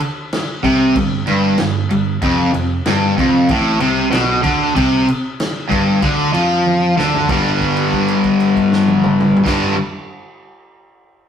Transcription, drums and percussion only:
0, 0, Header, 1, 2, 480
1, 0, Start_track
1, 0, Tempo, 634921
1, 1677, Time_signature, 4, 2, 24, 8
1, 8534, End_track
2, 0, Start_track
2, 0, Title_t, "Drums"
2, 2, Note_on_c, 9, 49, 62
2, 78, Note_off_c, 9, 49, 0
2, 246, Note_on_c, 9, 49, 83
2, 249, Note_on_c, 9, 38, 112
2, 322, Note_off_c, 9, 49, 0
2, 325, Note_off_c, 9, 38, 0
2, 481, Note_on_c, 9, 36, 100
2, 484, Note_on_c, 9, 49, 53
2, 557, Note_off_c, 9, 36, 0
2, 560, Note_off_c, 9, 49, 0
2, 723, Note_on_c, 9, 36, 95
2, 723, Note_on_c, 9, 49, 84
2, 798, Note_off_c, 9, 36, 0
2, 799, Note_off_c, 9, 49, 0
2, 958, Note_on_c, 9, 49, 56
2, 1034, Note_off_c, 9, 49, 0
2, 1193, Note_on_c, 9, 49, 77
2, 1196, Note_on_c, 9, 38, 115
2, 1268, Note_off_c, 9, 49, 0
2, 1271, Note_off_c, 9, 38, 0
2, 1440, Note_on_c, 9, 49, 59
2, 1515, Note_off_c, 9, 49, 0
2, 1676, Note_on_c, 9, 49, 78
2, 1682, Note_on_c, 9, 36, 97
2, 1752, Note_off_c, 9, 49, 0
2, 1758, Note_off_c, 9, 36, 0
2, 1921, Note_on_c, 9, 49, 58
2, 1997, Note_off_c, 9, 49, 0
2, 2159, Note_on_c, 9, 49, 79
2, 2162, Note_on_c, 9, 38, 112
2, 2235, Note_off_c, 9, 49, 0
2, 2238, Note_off_c, 9, 38, 0
2, 2405, Note_on_c, 9, 36, 97
2, 2411, Note_on_c, 9, 49, 58
2, 2481, Note_off_c, 9, 36, 0
2, 2487, Note_off_c, 9, 49, 0
2, 2638, Note_on_c, 9, 49, 83
2, 2642, Note_on_c, 9, 36, 109
2, 2714, Note_off_c, 9, 49, 0
2, 2718, Note_off_c, 9, 36, 0
2, 2875, Note_on_c, 9, 49, 63
2, 2951, Note_off_c, 9, 49, 0
2, 3119, Note_on_c, 9, 49, 86
2, 3122, Note_on_c, 9, 38, 116
2, 3195, Note_off_c, 9, 49, 0
2, 3198, Note_off_c, 9, 38, 0
2, 3356, Note_on_c, 9, 49, 66
2, 3360, Note_on_c, 9, 36, 111
2, 3431, Note_off_c, 9, 49, 0
2, 3435, Note_off_c, 9, 36, 0
2, 3600, Note_on_c, 9, 36, 102
2, 3601, Note_on_c, 9, 49, 87
2, 3675, Note_off_c, 9, 36, 0
2, 3676, Note_off_c, 9, 49, 0
2, 3843, Note_on_c, 9, 49, 61
2, 3919, Note_off_c, 9, 49, 0
2, 4081, Note_on_c, 9, 49, 82
2, 4084, Note_on_c, 9, 38, 118
2, 4156, Note_off_c, 9, 49, 0
2, 4159, Note_off_c, 9, 38, 0
2, 4318, Note_on_c, 9, 36, 100
2, 4320, Note_on_c, 9, 49, 61
2, 4393, Note_off_c, 9, 36, 0
2, 4395, Note_off_c, 9, 49, 0
2, 4553, Note_on_c, 9, 49, 82
2, 4555, Note_on_c, 9, 36, 105
2, 4629, Note_off_c, 9, 49, 0
2, 4631, Note_off_c, 9, 36, 0
2, 4796, Note_on_c, 9, 49, 58
2, 4871, Note_off_c, 9, 49, 0
2, 5038, Note_on_c, 9, 48, 66
2, 5113, Note_off_c, 9, 48, 0
2, 5281, Note_on_c, 9, 38, 95
2, 5357, Note_off_c, 9, 38, 0
2, 5397, Note_on_c, 9, 43, 96
2, 5472, Note_off_c, 9, 43, 0
2, 5512, Note_on_c, 9, 36, 111
2, 5512, Note_on_c, 9, 57, 89
2, 5587, Note_off_c, 9, 36, 0
2, 5587, Note_off_c, 9, 57, 0
2, 5754, Note_on_c, 9, 36, 62
2, 5757, Note_on_c, 9, 57, 42
2, 5829, Note_off_c, 9, 36, 0
2, 5833, Note_off_c, 9, 57, 0
2, 5871, Note_on_c, 9, 49, 44
2, 5947, Note_off_c, 9, 49, 0
2, 5994, Note_on_c, 9, 36, 66
2, 5995, Note_on_c, 9, 57, 46
2, 6069, Note_off_c, 9, 36, 0
2, 6070, Note_off_c, 9, 57, 0
2, 6110, Note_on_c, 9, 49, 52
2, 6186, Note_off_c, 9, 49, 0
2, 6229, Note_on_c, 9, 57, 48
2, 6231, Note_on_c, 9, 36, 63
2, 6304, Note_off_c, 9, 57, 0
2, 6307, Note_off_c, 9, 36, 0
2, 6351, Note_on_c, 9, 49, 53
2, 6427, Note_off_c, 9, 49, 0
2, 6473, Note_on_c, 9, 36, 66
2, 6478, Note_on_c, 9, 57, 56
2, 6549, Note_off_c, 9, 36, 0
2, 6553, Note_off_c, 9, 57, 0
2, 6597, Note_on_c, 9, 38, 96
2, 6673, Note_off_c, 9, 38, 0
2, 6713, Note_on_c, 9, 48, 88
2, 6789, Note_off_c, 9, 48, 0
2, 6832, Note_on_c, 9, 47, 100
2, 6908, Note_off_c, 9, 47, 0
2, 6958, Note_on_c, 9, 45, 105
2, 7034, Note_off_c, 9, 45, 0
2, 7079, Note_on_c, 9, 43, 98
2, 7149, Note_on_c, 9, 36, 108
2, 7152, Note_on_c, 9, 57, 99
2, 7155, Note_off_c, 9, 43, 0
2, 7155, Note_on_c, 9, 38, 97
2, 7225, Note_off_c, 9, 36, 0
2, 7228, Note_off_c, 9, 57, 0
2, 7231, Note_off_c, 9, 38, 0
2, 8534, End_track
0, 0, End_of_file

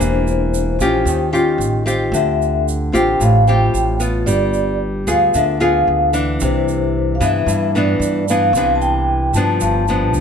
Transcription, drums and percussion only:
0, 0, Header, 1, 2, 480
1, 0, Start_track
1, 0, Key_signature, 0, "major"
1, 0, Tempo, 533808
1, 1, Time_signature, 4, 2, 24, 8
1, 9175, End_track
2, 0, Start_track
2, 0, Title_t, "Drums"
2, 8, Note_on_c, 9, 82, 61
2, 98, Note_off_c, 9, 82, 0
2, 246, Note_on_c, 9, 82, 27
2, 336, Note_off_c, 9, 82, 0
2, 486, Note_on_c, 9, 82, 50
2, 576, Note_off_c, 9, 82, 0
2, 722, Note_on_c, 9, 82, 55
2, 812, Note_off_c, 9, 82, 0
2, 960, Note_on_c, 9, 82, 64
2, 1050, Note_off_c, 9, 82, 0
2, 1210, Note_on_c, 9, 82, 26
2, 1300, Note_off_c, 9, 82, 0
2, 1448, Note_on_c, 9, 82, 51
2, 1538, Note_off_c, 9, 82, 0
2, 1685, Note_on_c, 9, 82, 59
2, 1775, Note_off_c, 9, 82, 0
2, 1925, Note_on_c, 9, 82, 62
2, 2015, Note_off_c, 9, 82, 0
2, 2175, Note_on_c, 9, 82, 25
2, 2265, Note_off_c, 9, 82, 0
2, 2412, Note_on_c, 9, 82, 52
2, 2502, Note_off_c, 9, 82, 0
2, 2652, Note_on_c, 9, 82, 55
2, 2742, Note_off_c, 9, 82, 0
2, 2885, Note_on_c, 9, 82, 67
2, 2975, Note_off_c, 9, 82, 0
2, 3124, Note_on_c, 9, 82, 25
2, 3214, Note_off_c, 9, 82, 0
2, 3369, Note_on_c, 9, 82, 52
2, 3459, Note_off_c, 9, 82, 0
2, 3598, Note_on_c, 9, 82, 61
2, 3688, Note_off_c, 9, 82, 0
2, 3842, Note_on_c, 9, 82, 61
2, 3932, Note_off_c, 9, 82, 0
2, 4079, Note_on_c, 9, 82, 26
2, 4169, Note_off_c, 9, 82, 0
2, 4563, Note_on_c, 9, 82, 59
2, 4653, Note_off_c, 9, 82, 0
2, 4801, Note_on_c, 9, 82, 60
2, 4891, Note_off_c, 9, 82, 0
2, 5040, Note_on_c, 9, 82, 25
2, 5130, Note_off_c, 9, 82, 0
2, 5517, Note_on_c, 9, 82, 56
2, 5607, Note_off_c, 9, 82, 0
2, 5756, Note_on_c, 9, 82, 60
2, 5846, Note_off_c, 9, 82, 0
2, 6009, Note_on_c, 9, 82, 26
2, 6099, Note_off_c, 9, 82, 0
2, 6487, Note_on_c, 9, 82, 61
2, 6577, Note_off_c, 9, 82, 0
2, 6728, Note_on_c, 9, 82, 62
2, 6818, Note_off_c, 9, 82, 0
2, 6973, Note_on_c, 9, 82, 26
2, 7063, Note_off_c, 9, 82, 0
2, 7210, Note_on_c, 9, 82, 54
2, 7300, Note_off_c, 9, 82, 0
2, 7447, Note_on_c, 9, 82, 59
2, 7537, Note_off_c, 9, 82, 0
2, 7687, Note_on_c, 9, 82, 62
2, 7777, Note_off_c, 9, 82, 0
2, 7927, Note_on_c, 9, 82, 26
2, 8017, Note_off_c, 9, 82, 0
2, 8399, Note_on_c, 9, 82, 58
2, 8489, Note_off_c, 9, 82, 0
2, 8636, Note_on_c, 9, 82, 63
2, 8726, Note_off_c, 9, 82, 0
2, 8881, Note_on_c, 9, 82, 25
2, 8971, Note_off_c, 9, 82, 0
2, 9117, Note_on_c, 9, 82, 49
2, 9175, Note_off_c, 9, 82, 0
2, 9175, End_track
0, 0, End_of_file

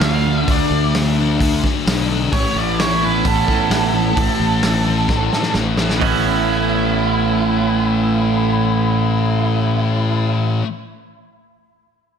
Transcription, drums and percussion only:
0, 0, Header, 1, 2, 480
1, 0, Start_track
1, 0, Key_signature, 3, "major"
1, 0, Tempo, 461538
1, 492, Time_signature, 4, 2, 24, 8
1, 12674, End_track
2, 0, Start_track
2, 0, Title_t, "Drums"
2, 11, Note_on_c, 9, 46, 50
2, 16, Note_on_c, 9, 38, 106
2, 115, Note_off_c, 9, 46, 0
2, 120, Note_off_c, 9, 38, 0
2, 496, Note_on_c, 9, 46, 52
2, 499, Note_on_c, 9, 36, 110
2, 600, Note_off_c, 9, 46, 0
2, 603, Note_off_c, 9, 36, 0
2, 982, Note_on_c, 9, 46, 48
2, 987, Note_on_c, 9, 38, 87
2, 1086, Note_off_c, 9, 46, 0
2, 1091, Note_off_c, 9, 38, 0
2, 1461, Note_on_c, 9, 36, 90
2, 1466, Note_on_c, 9, 46, 59
2, 1565, Note_off_c, 9, 36, 0
2, 1570, Note_off_c, 9, 46, 0
2, 1703, Note_on_c, 9, 36, 77
2, 1710, Note_on_c, 9, 38, 30
2, 1807, Note_off_c, 9, 36, 0
2, 1814, Note_off_c, 9, 38, 0
2, 1946, Note_on_c, 9, 46, 52
2, 1951, Note_on_c, 9, 38, 107
2, 2050, Note_off_c, 9, 46, 0
2, 2055, Note_off_c, 9, 38, 0
2, 2419, Note_on_c, 9, 46, 57
2, 2420, Note_on_c, 9, 36, 104
2, 2523, Note_off_c, 9, 46, 0
2, 2524, Note_off_c, 9, 36, 0
2, 2905, Note_on_c, 9, 46, 47
2, 2910, Note_on_c, 9, 38, 92
2, 3009, Note_off_c, 9, 46, 0
2, 3014, Note_off_c, 9, 38, 0
2, 3377, Note_on_c, 9, 46, 55
2, 3381, Note_on_c, 9, 36, 89
2, 3481, Note_off_c, 9, 46, 0
2, 3485, Note_off_c, 9, 36, 0
2, 3622, Note_on_c, 9, 36, 77
2, 3629, Note_on_c, 9, 38, 29
2, 3726, Note_off_c, 9, 36, 0
2, 3733, Note_off_c, 9, 38, 0
2, 3856, Note_on_c, 9, 46, 52
2, 3862, Note_on_c, 9, 38, 108
2, 3960, Note_off_c, 9, 46, 0
2, 3966, Note_off_c, 9, 38, 0
2, 4338, Note_on_c, 9, 36, 107
2, 4341, Note_on_c, 9, 46, 51
2, 4442, Note_off_c, 9, 36, 0
2, 4445, Note_off_c, 9, 46, 0
2, 4810, Note_on_c, 9, 46, 49
2, 4816, Note_on_c, 9, 38, 88
2, 4914, Note_off_c, 9, 46, 0
2, 4920, Note_off_c, 9, 38, 0
2, 5293, Note_on_c, 9, 36, 83
2, 5294, Note_on_c, 9, 38, 58
2, 5397, Note_off_c, 9, 36, 0
2, 5398, Note_off_c, 9, 38, 0
2, 5540, Note_on_c, 9, 38, 65
2, 5643, Note_off_c, 9, 38, 0
2, 5643, Note_on_c, 9, 38, 55
2, 5747, Note_off_c, 9, 38, 0
2, 5763, Note_on_c, 9, 38, 77
2, 5867, Note_off_c, 9, 38, 0
2, 6005, Note_on_c, 9, 38, 86
2, 6109, Note_off_c, 9, 38, 0
2, 6132, Note_on_c, 9, 38, 83
2, 6236, Note_off_c, 9, 38, 0
2, 6255, Note_on_c, 9, 36, 96
2, 6258, Note_on_c, 9, 43, 100
2, 6258, Note_on_c, 9, 46, 79
2, 6359, Note_off_c, 9, 36, 0
2, 6362, Note_off_c, 9, 43, 0
2, 6362, Note_off_c, 9, 46, 0
2, 12674, End_track
0, 0, End_of_file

